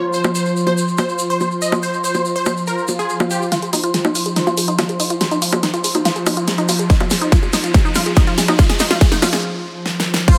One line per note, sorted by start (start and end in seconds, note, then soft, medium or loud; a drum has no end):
0.00 3.51 F3 medium
0.00 9.43 F4 medium
0.00 9.43 C5 medium
0.00 9.43 C6 medium
0.00 downlifter medium
0.13 0.26 C5 loud
0.13 shaker medium
0.24 high bongo medium
0.24 shaker soft
0.35 0.53 C5 medium
0.35 shaker medium
0.46 shaker soft
0.57 shaker medium
0.67 0.85 C5 loud
0.67 high bongo soft
0.67 shaker soft
0.78 shaker medium
0.88 shaker soft
0.98 1.17 C5 medium
0.98 high bongo medium
0.98 shaker medium
1.09 shaker soft
1.19 shaker medium
1.30 1.48 C5 loud
1.30 shaker soft
1.40 high bongo soft
1.40 shaker soft
1.51 shaker soft
1.62 1.74 D#5 medium
1.62 shaker medium
1.72 high bongo medium
1.72 shaker soft
1.83 1.95 C5 loud
1.83 shaker medium
1.94 shaker soft
2.04 2.22 C5 medium
2.04 shaker medium
2.14 high bongo soft
2.14 shaker soft
2.25 shaker medium
2.36 2.54 C5 loud
2.36 shaker soft
2.46 high bongo medium
2.46 shaker loud
2.57 shaker soft
2.67 2.86 A#4 loud
2.67 swell medium
2.67 shaker medium
2.78 shaker soft
2.88 high bongo soft
2.88 shaker medium
2.99 3.17 G#4 loud
2.99 shaker soft
3.09 shaker medium
3.20 high bongo medium
3.20 shaker soft
3.30 3.43 G4 medium
3.30 shaker medium
3.42 shaker soft
3.52 10.27 F3 medium
3.52 3.55 F4 loud
3.52 snare soft
3.52 closed hi-hat medium
3.52 riser medium
3.52 shaker medium
3.62 3.68 G#4 medium
3.62 closed hi-hat soft
3.62 shaker soft
3.73 3.81 D#4 loud
3.73 open hi-hat loud
3.73 high bongo soft
3.73 shaker loud
3.84 3.87 F4 loud
3.84 closed hi-hat medium
3.84 shaker soft
3.94 4.00 G#4 medium
3.94 snare medium
3.94 closed hi-hat medium
3.94 shaker medium
4.05 4.13 D#4 loud
4.05 high bongo medium
4.05 shaker soft
4.15 4.19 F4 loud
4.15 open hi-hat medium
4.15 shaker loud
4.26 4.31 G#4 medium
4.26 closed hi-hat medium
4.26 shaker soft
4.36 4.45 D#4 loud
4.36 snare medium
4.36 closed hi-hat medium
4.36 shaker medium
4.47 4.50 F4 loud
4.47 high bongo soft
4.47 shaker soft
4.57 4.63 G#4 medium
4.57 open hi-hat loud
4.57 shaker medium
4.68 4.76 D#4 loud
4.68 closed hi-hat medium
4.68 shaker soft
4.79 4.82 F4 loud
4.79 snare medium
4.79 closed hi-hat medium
4.79 high bongo medium
4.79 shaker medium
4.89 4.95 G#4 medium
4.89 closed hi-hat soft
4.89 shaker soft
5.00 5.08 D#4 loud
5.00 open hi-hat medium
5.00 shaker medium
5.10 5.14 F4 loud
5.10 closed hi-hat medium
5.10 shaker soft
5.21 5.26 G#4 medium
5.21 snare medium
5.21 closed hi-hat medium
5.21 high bongo soft
5.21 shaker soft
5.31 5.40 D#4 loud
5.31 closed hi-hat soft
5.31 shaker soft
5.42 5.45 F4 loud
5.42 open hi-hat loud
5.42 shaker loud
5.52 5.58 G#4 medium
5.52 closed hi-hat medium
5.52 high bongo medium
5.52 shaker soft
5.63 5.71 D#4 loud
5.63 snare medium
5.63 closed hi-hat medium
5.63 shaker soft
5.74 5.77 F4 loud
5.74 closed hi-hat soft
5.74 shaker soft
5.84 5.90 G#4 medium
5.84 open hi-hat loud
5.84 shaker medium
5.94 6.03 D#4 loud
5.94 closed hi-hat medium
5.94 high bongo soft
5.94 shaker soft
6.05 6.09 F4 loud
6.05 snare medium
6.05 closed hi-hat medium
6.05 shaker medium
6.15 6.21 G#4 medium
6.15 closed hi-hat soft
6.15 shaker soft
6.26 6.35 D#4 loud
6.26 open hi-hat loud
6.26 high bongo medium
6.26 shaker loud
6.37 6.40 F4 loud
6.37 closed hi-hat medium
6.37 shaker soft
6.48 6.53 G#4 medium
6.48 snare medium
6.48 closed hi-hat medium
6.48 shaker medium
6.58 6.67 D#4 loud
6.58 closed hi-hat soft
6.58 shaker soft
6.69 6.72 F4 loud
6.69 open hi-hat loud
6.69 high bongo soft
6.69 shaker medium
6.79 6.85 G#4 medium
6.79 closed hi-hat medium
6.79 shaker soft
6.90 6.98 D#4 loud
6.90 kick loud
6.90 snare medium
6.90 closed hi-hat medium
6.90 shaker medium
7.00 7.04 F4 loud
7.00 closed hi-hat soft
7.00 high bongo medium
7.00 shaker soft
7.10 7.17 G#4 medium
7.10 snare medium
7.10 open hi-hat loud
7.10 shaker medium
7.21 7.30 D#4 loud
7.21 closed hi-hat soft
7.21 shaker soft
7.32 7.35 F4 loud
7.32 kick loud
7.32 snare medium
7.32 closed hi-hat medium
7.32 shaker medium
7.42 7.48 G#4 medium
7.42 high bongo soft
7.42 shaker soft
7.53 7.62 D#4 loud
7.53 snare medium
7.53 open hi-hat loud
7.53 shaker loud
7.64 7.67 F4 loud
7.64 closed hi-hat medium
7.64 shaker soft
7.74 7.80 G#4 medium
7.74 kick loud
7.74 snare medium
7.74 closed hi-hat medium
7.74 high bongo medium
7.74 shaker medium
7.85 7.93 D#4 loud
7.85 shaker soft
7.95 7.99 F4 loud
7.95 snare medium
7.95 open hi-hat loud
7.95 shaker medium
8.06 8.12 G#4 medium
8.06 closed hi-hat medium
8.06 shaker soft
8.16 8.25 D#4 loud
8.16 kick loud
8.16 snare medium
8.16 closed hi-hat medium
8.16 high bongo soft
8.16 shaker medium
8.27 8.31 F4 loud
8.27 closed hi-hat soft
8.27 shaker soft
8.38 8.43 G#4 medium
8.38 snare medium
8.38 open hi-hat loud
8.38 shaker loud
8.48 8.57 D#4 loud
8.48 closed hi-hat medium
8.48 high bongo medium
8.48 shaker soft
8.59 8.62 F4 loud
8.59 kick loud
8.59 snare loud
8.59 closed hi-hat medium
8.59 shaker medium
8.69 8.75 G#4 medium
8.69 snare medium
8.69 closed hi-hat soft
8.69 shaker soft
8.79 8.88 D#4 loud
8.79 snare medium
8.79 open hi-hat loud
8.79 shaker loud
8.91 8.94 F4 loud
8.91 snare medium
8.91 closed hi-hat medium
8.91 high bongo soft
8.91 shaker soft
9.01 9.07 G#4 medium
9.01 kick loud
9.01 snare loud
9.01 closed hi-hat medium
9.01 shaker medium
9.12 9.20 D#4 loud
9.12 snare medium
9.12 closed hi-hat soft
9.12 shaker soft
9.22 9.26 F4 loud
9.22 snare loud
9.22 open hi-hat loud
9.22 high bongo medium
9.22 shaker loud
9.32 9.38 G#4 medium
9.32 snare medium
9.32 closed hi-hat medium
9.32 shaker soft
9.86 snare medium
10.00 snare medium
10.14 snare loud
10.28 10.38 F3 medium
10.28 10.31 F4 loud
10.28 10.38 C5 loud
10.28 kick loud
10.28 closed hi-hat medium
10.28 crash loud
10.28 impact medium